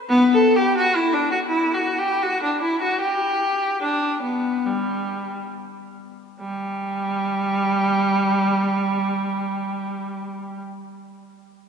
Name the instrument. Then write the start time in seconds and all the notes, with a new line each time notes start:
viola
0.09 B3
0.33 A4
0.56 G4
0.78 F#4
0.96 E4
1.13 D4
1.31 F#4
1.48 E4
1.74 F#4
1.99 G4
2.23 F#4
2.43 D4
2.62 E4
2.82 F#4
3.00 G4
3.82 D4
4.22 B3
4.65 G3
6.40 G3